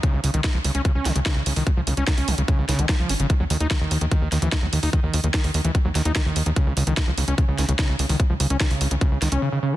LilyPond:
<<
  \new Staff \with { instrumentName = "Acid bass" } { \clef bass \time 4/4 \key des \dorian \tempo 4 = 147 des16 des16 des16 ees16 r16 f16 des16 des'16 des16 des'16 des16 des16 des16 des16 des16 ees16 | des16 f16 des16 des'16 des16 des'16 des16 des16 des16 des16 des16 ees16 f16 f16 des'16 des16 | ees16 ges16 ees16 ees'16 ees16 ees16 ees16 ees16 ees16 ees16 ees16 fes16 r16 ges16 ees16 ees'16 | ees16 ees16 ees16 ees16 ees16 ees16 ees16 fes16 ees16 ges16 ees16 ees'16 ees16 ees16 ees16 ees16 |
des16 des16 des16 ees16 des16 f16 des16 des'16 des16 des16 des16 des16 des16 des16 des16 ees16 | des16 f16 des16 des'16 des16 des16 des16 des16 des16 des16 ees16 des'16 des16 des16 des16 aes16 | }
  \new Staff \with { instrumentName = "Analog synth bass" } { \clef bass \time 4/4 \key des \dorian r16 des,16 des,16 des,16 r16 des,16 des,16 des,16 r16 des,16 des,16 des,16 r16 des,16 des,16 des,16 | r16 des,16 des,16 des,16 r16 des,16 des,16 des,16 r16 des,16 des,16 des,16 r16 des,16 aes,,16 aes,,16 | r16 ees,16 ees,16 ees,16 r16 ees,16 ees,16 ees,16 r16 ees,16 ees,16 ees,16 r16 ees,16 ees,16 ees,16 | r16 ees,16 ees,16 ees,16 r16 ees,16 ees,16 ees,16 r16 ees,16 ees,16 ees,16 r16 ees,16 ees,16 ees,16 |
r16 des,16 des,16 des,16 r16 des,16 des,16 des,16 r16 des,16 des,16 des,16 r16 des,16 des,16 des,16 | r16 des,16 des,16 des,16 r16 des,16 des,16 des,16 r16 des,16 des,16 des,16 r4 | }
  \new DrumStaff \with { instrumentName = "Drums" } \drummode { \time 4/4 <hh bd>8 hho16 hh16 <hh bd sn>8 hho16 hh16 <hh bd>8 <hho sn>16 hh16 <hh bd sn>8 hho16 hho16 | <hh bd>8 hho16 hh16 <hh bd sn>16 hho16 hho16 hh16 <hh bd>8 <hho sn>16 hh16 <hh bd sn>8 hho16 hh16 | <hh bd>8 hho16 hh16 <hh bd sn>8 hho16 hh16 <hh bd>8 <hho sn>16 hh16 <hh bd sn>8 hho16 hho16 | <hh bd>8 hho16 hh16 <hh bd sn>16 hho16 hho16 hh16 <hh bd>8 <hho sn>16 hh16 <hh bd sn>8 hho16 hh16 |
<hh bd>8 hho16 hh16 <hh bd sn>8 hho16 hh16 <hh bd>8 <hho sn>16 hh16 <hh bd sn>8 hho16 hho16 | <hh bd>8 hho16 hh16 <hh bd sn>16 hho16 hho16 hh16 <hh bd>8 <hho sn>16 hh16 r4 | }
>>